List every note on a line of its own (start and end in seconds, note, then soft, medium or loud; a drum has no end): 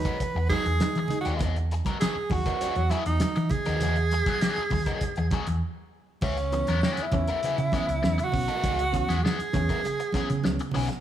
0.00 0.49 B4 loud
0.05 0.17 F#3 medium
0.05 0.17 B3 medium
0.05 0.16 D#4 medium
0.05 0.16 A#4 medium
0.05 kick medium
0.05 closed hi-hat soft
0.20 0.36 E3 medium
0.20 muted fingered electric bass stroke soft
0.20 muted overdriven electric guitar stroke soft
0.20 kick medium
0.20 closed hi-hat medium
0.20 muted conga soft
0.35 0.48 E2 medium
0.35 muted overdriven electric guitar stroke soft
0.49 0.65 F#3 medium
0.49 0.64 G#3 medium
0.49 0.64 D#4 medium
0.49 1.16 G#4 loud
0.49 kick medium
0.49 closed hi-hat medium
0.49 high conga medium
0.53 0.65 B3 medium
0.53 0.66 D#4 medium
0.53 0.66 G#4 loud
0.65 0.79 E2 loud
0.65 0.72 G#3 soft
0.65 0.72 D#4 soft
0.65 muted overdriven electric guitar stroke soft
0.65 closed hi-hat medium
0.80 0.95 G#3 medium
0.80 0.96 D#4 medium
0.80 muted overdriven electric guitar stroke soft
0.80 snare loud
0.80 closed hi-hat medium
0.80 muted conga soft
0.80 high conga medium
0.95 1.11 E3 medium
0.95 1.09 E3 loud
0.95 muted overdriven electric guitar stroke soft
0.95 closed hi-hat soft
1.08 1.25 G#3 medium
1.08 1.26 D#4 medium
1.08 closed hi-hat medium
1.08 low conga medium
1.21 1.49 F#4 medium
1.25 1.40 D#2 medium
1.25 1.40 F#3 medium
1.25 1.41 B3 medium
1.25 1.42 D#4 medium
1.25 1.42 G#4 medium
1.25 closed hi-hat soft
1.39 1.79 E2 loud
1.39 1.55 F#3 medium
1.39 1.55 B3 medium
1.39 1.55 D#4 medium
1.39 1.56 G#4 medium
1.39 kick loud
1.39 closed hi-hat medium
1.39 muted conga soft
1.39 low conga medium
1.56 muted overdriven electric guitar stroke soft
1.56 closed hi-hat soft
1.71 muted overdriven electric guitar stroke soft
1.71 closed hi-hat medium
1.85 1.98 F#3 soft
1.85 1.97 B3 soft
1.85 1.97 D#4 medium
1.85 1.97 A#4 medium
1.85 kick medium
1.85 closed hi-hat soft
1.85 high conga medium
2.01 2.15 F#3 medium
2.01 2.15 B3 medium
2.01 2.15 D#4 medium
2.01 2.34 G#4 loud
2.01 2.15 G#4 medium
2.01 snare loud
2.01 closed hi-hat loud
2.15 muted fingered electric bass stroke soft
2.30 2.44 D#2 medium
2.30 2.92 F#4 loud
2.30 muted overdriven electric guitar stroke soft
2.30 kick medium
2.30 open hi-hat medium
2.30 muted conga soft
2.30 high conga medium
2.30 low conga medium
2.46 2.58 F#3 medium
2.46 2.58 B3 medium
2.46 2.57 D#4 medium
2.46 2.57 A#4 medium
2.46 kick medium
2.46 closed hi-hat medium
2.61 2.81 F#3 medium
2.61 2.76 B3 medium
2.61 2.76 D#4 loud
2.61 2.75 G#4 loud
2.61 muted fingered electric bass stroke soft
2.61 closed hi-hat medium
2.61 muted conga soft
2.76 2.89 E2 medium
2.76 muted overdriven electric guitar stroke medium
2.76 closed hi-hat soft
2.90 3.02 F#3 medium
2.90 3.02 B3 medium
2.90 3.02 D#4 medium
2.90 3.06 E4 loud
2.90 3.02 G#4 medium
2.90 closed hi-hat medium
2.90 high conga medium
3.06 3.19 E2 loud
3.06 3.53 D#4 loud
3.06 muted overdriven electric guitar stroke soft
3.06 closed hi-hat medium
3.20 muted overdriven electric guitar stroke soft
3.20 snare loud
3.20 closed hi-hat medium
3.20 high conga medium
3.36 3.50 E3 medium
3.36 muted overdriven electric guitar stroke medium
3.36 closed hi-hat soft
3.49 5.62 G#4 loud
3.49 kick medium
3.49 closed hi-hat medium
3.49 muted conga soft
3.49 low conga medium
3.65 3.81 D#2 medium
3.65 3.81 F#3 medium
3.65 3.81 B3 medium
3.65 3.80 D#4 medium
3.65 3.80 A#4 medium
3.65 snare soft
3.65 closed hi-hat soft
3.80 4.20 E2 loud
3.80 3.95 F#3 medium
3.80 3.96 B3 medium
3.80 3.96 D#4 medium
3.80 3.96 G#4 medium
3.80 closed hi-hat medium
3.80 muted conga soft
3.80 low conga medium
3.96 muted overdriven electric guitar stroke soft
3.96 closed hi-hat soft
4.11 muted overdriven electric guitar stroke soft
4.11 closed hi-hat medium
4.11 muted conga soft
4.26 4.39 F#3 soft
4.26 4.39 B3 soft
4.26 4.38 D#4 medium
4.26 4.38 G#4 medium
4.26 kick loud
4.26 closed hi-hat soft
4.26 high conga medium
4.41 4.62 F#3 medium
4.41 4.62 B3 medium
4.41 4.62 D#4 medium
4.41 4.63 G#4 medium
4.41 snare loud
4.41 closed hi-hat loud
4.56 muted fingered electric bass stroke soft
4.56 closed hi-hat soft
4.70 4.84 D#2 medium
4.70 muted overdriven electric guitar stroke soft
4.70 kick medium
4.70 open hi-hat medium
4.70 muted conga soft
4.70 high conga medium
4.70 low conga medium
4.86 4.98 F#3 medium
4.86 4.98 B3 medium
4.86 4.98 D#4 medium
4.86 4.98 A#4 medium
4.86 kick medium
4.86 closed hi-hat medium
5.01 muted fingered electric bass stroke soft
5.01 muted overdriven electric guitar stroke soft
5.01 kick medium
5.01 closed hi-hat medium
5.01 muted conga soft
5.16 5.30 E2 medium
5.16 muted overdriven electric guitar stroke soft
5.16 closed hi-hat soft
5.31 5.46 F#3 medium
5.31 5.46 B3 medium
5.31 5.46 D#4 loud
5.31 5.47 G#4 medium
5.31 kick loud
5.31 closed hi-hat medium
5.31 muted conga soft
5.31 high conga medium
5.47 5.60 E2 medium
5.47 muted overdriven electric guitar stroke soft
5.47 closed hi-hat medium
6.21 6.61 C#2 loud
6.21 6.37 C#3 medium
6.21 6.36 G#3 medium
6.21 6.36 B3 loud
6.21 7.04 C#4 medium
6.21 6.37 E4 medium
6.21 6.37 G#4 medium
6.21 kick loud
6.21 crash medium
6.21 muted conga soft
6.37 muted overdriven electric guitar stroke medium
6.37 closed hi-hat medium
6.52 6.68 E3 medium
6.52 6.67 B3 medium
6.52 6.66 C#4 medium
6.52 muted overdriven electric guitar stroke soft
6.52 closed hi-hat medium
6.52 muted conga soft
6.67 6.81 E2 medium
6.67 6.80 G#3 medium
6.67 6.74 B3 soft
6.67 6.79 B3 medium
6.67 6.74 C#4 soft
6.67 6.79 E4 medium
6.67 6.79 A#4 medium
6.67 closed hi-hat medium
6.67 high conga medium
6.81 7.03 G#3 medium
6.81 7.04 B3 medium
6.81 7.04 E4 medium
6.81 7.04 G#4 medium
6.81 snare loud
6.81 muted conga soft
6.97 muted fingered electric bass stroke medium
6.97 closed hi-hat medium
7.03 8.25 E4 loud
7.12 7.26 E2 medium
7.12 7.28 E3 medium
7.12 7.28 B3 medium
7.12 7.28 C#4 loud
7.12 muted overdriven electric guitar stroke soft
7.12 kick loud
7.12 closed hi-hat medium
7.12 high conga medium
7.12 low conga medium
7.27 7.40 G#3 medium
7.27 7.40 B3 medium
7.27 7.39 E4 medium
7.27 7.39 A#4 medium
7.27 closed hi-hat medium
7.43 7.58 C#3 medium
7.43 7.57 G#3 medium
7.43 7.57 B3 medium
7.43 7.58 E4 medium
7.43 7.58 G#4 medium
7.43 muted fingered electric bass stroke soft
7.43 closed hi-hat medium
7.58 7.71 C#3 medium
7.58 muted overdriven electric guitar stroke medium
7.58 closed hi-hat soft
7.72 7.88 E3 medium
7.72 7.84 G#3 medium
7.72 7.86 B3 medium
7.72 7.84 B3 medium
7.72 7.86 C#4 medium
7.72 7.85 E4 medium
7.72 7.85 G#4 medium
7.72 kick medium
7.72 closed hi-hat medium
7.72 muted conga soft
7.72 high conga medium
7.87 8.01 C#2 loud
7.87 7.94 B3 soft
7.87 7.94 C#4 soft
7.87 muted overdriven electric guitar stroke soft
7.87 closed hi-hat medium
8.02 8.16 E2 medium
8.02 8.18 B3 medium
8.02 8.18 C#4 medium
8.02 muted overdriven electric guitar stroke soft
8.02 snare medium
8.02 muted conga soft
8.02 high conga medium
8.18 8.33 C#3 medium
8.18 muted overdriven electric guitar stroke soft
8.18 closed hi-hat medium
8.24 9.25 F#4 loud
8.32 8.46 B1 medium
8.32 8.48 B3 medium
8.32 8.48 C#4 medium
8.32 kick medium
8.32 open hi-hat medium
8.32 low conga medium
8.48 8.63 G#3 medium
8.48 8.64 B3 medium
8.48 8.64 E4 medium
8.48 8.65 A#4 medium
8.48 closed hi-hat soft
8.63 9.02 C#2 loud
8.63 8.78 C#3 medium
8.63 8.84 G#3 medium
8.63 8.80 B3 medium
8.63 8.80 E4 medium
8.63 8.79 G#4 loud
8.63 kick loud
8.63 closed hi-hat medium
8.63 muted conga soft
8.79 muted overdriven electric guitar stroke soft
8.79 closed hi-hat medium
8.92 9.08 E3 medium
8.92 9.07 B3 medium
8.92 9.07 C#4 medium
8.92 muted overdriven electric guitar stroke soft
8.92 kick loud
8.92 closed hi-hat medium
8.92 muted conga soft
9.08 9.21 E2 medium
9.08 9.20 G#3 medium
9.08 9.14 B3 soft
9.08 9.20 B3 medium
9.08 9.14 C#4 soft
9.08 9.19 E4 medium
9.08 9.19 G#4 medium
9.08 closed hi-hat medium
9.08 high conga medium
9.23 9.38 G#3 medium
9.23 9.38 B3 medium
9.23 9.38 E4 medium
9.23 10.74 G#4 loud
9.23 9.39 G#4 medium
9.23 snare loud
9.23 muted conga soft
9.39 muted fingered electric bass stroke soft
9.39 closed hi-hat soft
9.53 9.67 E2 medium
9.53 9.68 E3 medium
9.53 9.68 B3 medium
9.53 9.69 C#4 loud
9.53 muted overdriven electric guitar stroke soft
9.53 kick loud
9.53 closed hi-hat medium
9.53 muted conga soft
9.53 high conga medium
9.53 low conga medium
9.69 9.81 G#3 soft
9.69 9.80 B3 medium
9.69 9.80 E4 medium
9.69 9.80 A#4 medium
9.69 kick medium
9.69 closed hi-hat medium
9.83 9.98 C#3 medium
9.83 muted overdriven electric guitar stroke medium
9.83 closed hi-hat medium
9.83 muted conga soft
10.00 muted overdriven electric guitar stroke soft
10.00 closed hi-hat medium
10.12 10.28 E3 medium
10.12 10.28 G#3 medium
10.12 10.27 B3 medium
10.12 10.28 B3 medium
10.12 10.27 C#4 medium
10.12 10.28 E4 medium
10.12 muted fingered electric bass stroke soft
10.12 kick medium
10.12 closed hi-hat medium
10.12 muted conga soft
10.12 high conga medium
10.17 10.29 G#4 medium
10.28 10.42 C#3 medium
10.28 10.34 B3 soft
10.28 10.35 C#4 soft
10.28 muted overdriven electric guitar stroke soft
10.28 closed hi-hat medium
10.43 10.57 C#2 loud
10.43 10.58 B3 medium
10.43 10.59 C#4 medium
10.43 muted overdriven electric guitar stroke medium
10.43 snare loud
10.43 muted conga soft
10.43 high conga medium
10.59 10.74 C#3 medium
10.59 muted overdriven electric guitar stroke soft
10.59 closed hi-hat medium
10.71 10.87 B1 medium
10.71 10.88 G#3 loud
10.71 10.89 B3 medium
10.71 10.88 B3 loud
10.71 10.89 C#4 medium
10.71 open hi-hat medium
10.71 low conga medium
10.76 10.88 E4 medium
10.76 10.88 G#4 medium
10.89 muted overdriven electric guitar stroke soft
10.89 snare soft
10.89 closed hi-hat soft